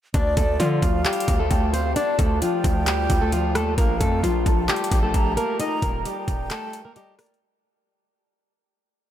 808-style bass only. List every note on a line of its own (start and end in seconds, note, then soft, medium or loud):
0.14 0.36 D2 loud
0.37 0.59 D2 loud
0.60 0.82 D3 loud
0.82 1.04 D2 loud
1.28 1.50 D2 loud
1.51 1.94 D2 loud
2.19 2.41 D2 loud
2.64 3.08 D2 loud
3.10 3.57 D2 loud
3.55 3.77 D#2 loud
3.78 4.00 A#1 loud
4.01 4.22 F2 loud
4.23 4.45 A#1 loud
4.46 4.68 A#1 loud
4.92 5.13 A#1 loud
5.14 5.36 A#1 loud
5.82 6.04 D#1 loud
6.28 6.50 D#1 loud